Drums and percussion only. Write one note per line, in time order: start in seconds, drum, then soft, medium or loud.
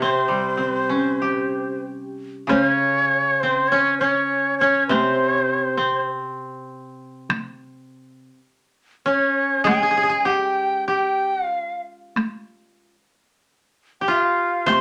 2.50 taiko rim soft
2.50 taiko high soft
4.91 taiko rim soft
4.91 taiko high soft
7.30 taiko rim medium
7.30 taiko high medium
9.67 taiko rim medium
9.67 taiko high medium
12.16 taiko rim soft
12.16 taiko high soft
14.68 taiko rim soft
14.68 taiko high soft